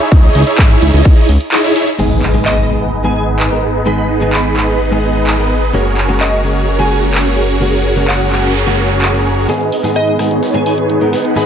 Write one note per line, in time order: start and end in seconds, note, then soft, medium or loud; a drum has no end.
0.12 0.29 C#2 loud
0.12 0.44 D#4 medium
0.12 0.44 E4 medium
0.12 0.44 G#4 medium
0.12 0.44 C#5 medium
0.12 0.44 D#5 loud
0.12 kick loud
0.12 closed hi-hat medium
0.12 ride medium
0.23 closed hi-hat soft
0.35 0.44 C#2 medium
0.35 open hi-hat loud
0.35 ride medium
0.47 0.91 D#4 loud
0.47 0.91 E4 medium
0.47 0.91 G#4 medium
0.47 0.91 C#5 medium
0.47 0.91 E5 loud
0.47 closed hi-hat medium
0.58 0.76 G#1 medium
0.58 kick loud
0.58 cross-stick medium
0.58 clap loud
0.58 closed hi-hat medium
0.58 ride medium
0.70 closed hi-hat soft
0.82 0.91 C#2 medium
0.82 open hi-hat medium
0.82 ride medium
0.94 1.02 C#2 loud
0.94 1.26 D#4 medium
0.94 1.26 E4 medium
0.94 1.26 G#4 medium
0.94 1.26 C#5 medium
0.94 1.26 D#5 medium
0.94 closed hi-hat medium
1.05 1.14 C#2 loud
1.05 kick loud
1.05 closed hi-hat medium
1.05 ride medium
1.17 closed hi-hat soft
1.29 1.38 C#2 loud
1.29 open hi-hat loud
1.29 ride medium
1.41 closed hi-hat medium
1.52 1.61 D#4 medium
1.52 1.61 E4 medium
1.52 1.61 G#4 medium
1.52 1.61 C#5 medium
1.52 1.61 D#5 loud
1.52 clap loud
1.52 closed hi-hat medium
1.52 ride medium
1.64 1.74 D#4 medium
1.64 1.74 E4 medium
1.64 1.74 G#4 medium
1.64 1.74 C#5 medium
1.64 1.74 E5 loud
1.64 closed hi-hat soft
1.76 1.90 D#4 medium
1.76 1.90 E4 medium
1.76 1.90 G#4 medium
1.76 1.90 C#5 medium
1.76 1.90 E5 loud
1.76 open hi-hat medium
1.76 ride medium
1.87 closed hi-hat medium
1.98 5.72 G#1 medium
1.98 2.19 G#2 loud
1.98 2.20 D#3 medium
1.98 2.20 G#3 medium
1.98 5.71 B3 medium
1.98 2.20 B3 medium
1.98 5.71 D#4 medium
1.98 5.71 G#4 medium
1.98 2.20 G#4 loud
1.98 5.71 B4 medium
1.98 5.71 D#5 medium
1.98 crash medium
1.98 impact medium
2.22 clap medium
2.34 2.66 G#2 medium
2.34 2.66 D#3 medium
2.34 2.67 G#3 medium
2.34 2.67 B3 medium
2.34 2.67 G#4 medium
2.46 2.65 D#5 medium
2.46 clap loud
2.69 2.90 G#2 medium
2.69 2.90 D#3 medium
2.69 2.90 G#3 medium
2.69 2.90 B3 medium
2.69 2.90 G#4 medium
3.04 3.48 G#2 medium
3.04 3.48 D#3 medium
3.04 3.49 G#3 medium
3.04 3.49 B3 medium
3.04 3.49 G#4 medium
3.04 3.12 G#5 medium
3.16 3.24 G#5 medium
3.40 clap loud
3.51 3.64 G#2 medium
3.51 3.64 D#3 medium
3.51 3.64 G#3 medium
3.51 3.64 B3 medium
3.51 3.65 A#4 medium
3.86 4.07 G#2 medium
3.86 4.07 D#3 medium
3.86 4.07 G#3 medium
3.86 4.07 B3 medium
3.86 4.08 G#4 loud
3.86 3.94 B5 medium
3.98 4.06 B5 medium
4.21 4.54 G#2 medium
4.21 4.54 D#3 medium
4.21 4.54 G#3 medium
4.21 4.54 B3 medium
4.21 4.54 G#4 medium
4.33 4.80 B5 medium
4.33 clap loud
4.56 4.77 G#2 medium
4.56 4.77 D#3 medium
4.56 4.78 G#3 medium
4.56 4.78 B3 medium
4.56 4.78 G#4 medium
4.56 clap medium
4.91 5.36 G#2 medium
4.91 5.36 D#3 medium
4.91 5.36 G#3 medium
4.91 5.36 B3 medium
4.91 5.36 G#4 medium
5.27 clap loud
5.38 5.52 G#2 medium
5.38 5.52 D#3 medium
5.38 5.52 G#3 medium
5.38 5.52 B3 medium
5.38 5.52 A#4 medium
5.73 9.47 F#1 medium
5.73 5.94 C#3 medium
5.73 5.95 G#3 medium
5.73 5.95 A#3 medium
5.73 9.46 C#4 medium
5.73 9.46 F#4 medium
5.73 5.95 F#4 loud
5.73 9.46 G#4 medium
5.73 9.46 A#4 medium
5.73 9.46 C#5 medium
5.97 clap medium
6.08 6.41 C#3 medium
6.08 6.41 G#3 medium
6.08 6.42 A#3 medium
6.08 6.42 F#4 medium
6.21 6.40 D#5 medium
6.21 clap loud
6.44 6.65 C#3 medium
6.44 6.65 G#3 medium
6.44 6.65 A#3 medium
6.44 6.65 F#4 medium
6.79 7.23 C#3 medium
6.79 7.23 G#3 medium
6.79 7.24 A#3 medium
6.79 7.24 F#4 medium
6.79 6.87 G#5 medium
6.91 6.99 G#5 medium
7.14 clap loud
7.26 7.39 C#3 medium
7.26 7.39 G#3 medium
7.26 7.39 A#3 medium
7.26 7.40 G#4 medium
7.61 7.82 C#3 medium
7.61 7.82 G#3 medium
7.61 7.82 A#3 medium
7.61 7.83 F#4 loud
7.61 noise sweep medium
7.96 8.29 C#3 medium
7.96 8.29 G#3 medium
7.96 8.29 A#3 medium
7.96 8.29 F#4 loud
8.08 8.44 F#5 medium
8.08 clap loud
8.31 8.52 C#3 medium
8.31 8.52 G#3 medium
8.31 8.53 A#3 medium
8.31 8.53 F#4 medium
8.31 clap medium
8.66 9.11 C#3 medium
8.66 9.11 G#3 medium
8.66 9.11 A#3 medium
8.66 9.11 F#4 loud
9.02 clap loud
9.13 9.27 C#3 medium
9.13 9.27 G#3 medium
9.13 9.27 A#3 medium
9.13 9.27 G#4 medium
9.48 9.67 G#1 loud
9.48 9.69 G#2 loud
9.48 9.70 D#3 medium
9.48 9.70 G#3 medium
9.48 9.81 B3 medium
9.48 9.70 B3 medium
9.48 9.81 D#4 medium
9.48 9.81 G#4 medium
9.48 9.70 G#4 loud
9.48 9.81 B4 medium
9.48 9.81 D#5 medium
9.48 snare soft
9.48 closed hi-hat medium
9.48 riser medium
9.61 closed hi-hat soft
9.72 9.81 G#1 medium
9.72 open hi-hat loud
9.83 10.16 G#2 medium
9.83 10.16 D#3 medium
9.83 10.17 G#3 medium
9.83 10.28 B3 medium
9.83 10.17 B3 medium
9.83 10.28 D#4 medium
9.83 10.28 G#4 medium
9.83 10.17 G#4 loud
9.83 10.28 B4 medium
9.83 10.28 F#5 loud
9.83 snare soft
9.83 open hi-hat medium
9.96 10.14 G#2 medium
9.96 10.15 D#5 medium
9.96 cross-stick medium
9.96 closed hi-hat medium
10.08 closed hi-hat soft
10.19 10.28 G#1 medium
10.19 10.40 G#2 medium
10.19 10.40 D#3 medium
10.19 10.40 G#3 medium
10.19 10.40 B3 medium
10.19 10.40 G#4 medium
10.19 cross-stick medium
10.19 snare medium
10.19 open hi-hat loud
10.31 10.40 G#1 loud
10.31 10.63 B3 medium
10.31 10.63 D#4 medium
10.31 10.63 G#4 medium
10.31 10.63 B4 medium
10.31 10.63 C#5 medium
10.31 closed hi-hat medium
10.43 10.52 G#1 loud
10.43 snare medium
10.43 closed hi-hat medium
10.54 10.98 G#2 medium
10.54 10.98 D#3 medium
10.54 10.99 G#3 medium
10.54 10.99 B3 medium
10.54 10.99 G#4 loud
10.54 10.62 G#5 medium
10.54 closed hi-hat soft
10.66 10.84 G#1 medium
10.66 10.99 B3 medium
10.66 10.99 D#4 medium
10.66 10.99 G#4 medium
10.66 10.99 B4 medium
10.66 10.99 C#5 medium
10.66 10.74 G#5 medium
10.66 open hi-hat loud
10.78 closed hi-hat medium
10.90 11.07 G#1 medium
10.90 closed hi-hat medium
11.01 11.14 G#2 medium
11.01 11.14 D#3 medium
11.01 11.14 G#3 medium
11.01 11.34 B3 loud
11.01 11.14 B3 medium
11.01 11.34 D#4 medium
11.01 11.34 G#4 medium
11.01 11.15 A#4 medium
11.01 11.34 B4 medium
11.01 11.34 F#5 loud
11.01 closed hi-hat soft
11.13 11.22 G#1 loud
11.13 snare medium
11.13 open hi-hat loud
11.25 closed hi-hat medium
11.36 11.46 G#1 loud
11.36 11.46 G#2 loud
11.36 11.46 D#3 medium
11.36 11.46 G#3 medium
11.36 11.46 B3 medium
11.36 11.46 D#4 medium
11.36 11.46 G#4 medium
11.36 11.46 G#4 loud
11.36 11.46 B4 medium
11.36 11.46 D#5 loud
11.36 11.44 B5 medium
11.36 snare medium
11.36 closed hi-hat medium